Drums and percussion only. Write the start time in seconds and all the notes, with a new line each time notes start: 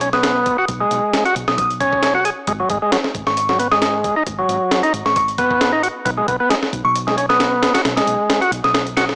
0.01 closed hi-hat
0.13 snare
0.23 snare, closed hi-hat
0.46 kick, closed hi-hat
0.68 kick, closed hi-hat
0.91 closed hi-hat
1.13 snare, closed hi-hat
1.26 closed hi-hat
1.36 closed hi-hat
1.48 snare
1.58 kick, closed hi-hat
1.70 closed hi-hat
1.81 kick, closed hi-hat
1.93 kick
2.03 snare, closed hi-hat
2.25 closed hi-hat
2.47 kick, closed hi-hat
2.70 kick, closed hi-hat
2.92 snare, closed hi-hat
3.04 snare
3.15 kick, closed hi-hat
3.27 snare
3.37 closed hi-hat
3.49 snare
3.60 closed hi-hat
3.72 snare
3.82 snare, closed hi-hat
4.04 kick, closed hi-hat
4.27 kick, closed hi-hat
4.49 closed hi-hat
4.71 snare, closed hi-hat
4.83 closed hi-hat
4.94 closed hi-hat
5.06 snare
5.16 kick, closed hi-hat
5.28 closed hi-hat
5.38 kick, closed hi-hat
5.51 kick
5.61 snare, closed hi-hat
5.84 closed hi-hat
6.06 kick, closed hi-hat
6.28 kick, closed hi-hat
6.50 snare, closed hi-hat
6.63 snare
6.73 kick, closed hi-hat
6.96 closed hi-hat
7.08 snare
7.18 closed hi-hat
7.30 snare
7.40 snare, closed hi-hat
7.63 snare, closed hi-hat
7.75 snare, closed hi-hat
7.85 snare, closed hi-hat
7.97 snare, closed hi-hat
8.07 closed hi-hat
8.30 snare, closed hi-hat
8.42 closed hi-hat
8.52 closed hi-hat
8.64 snare
8.74 snare, closed hi-hat
8.87 closed hi-hat
8.97 snare, closed hi-hat
9.09 snare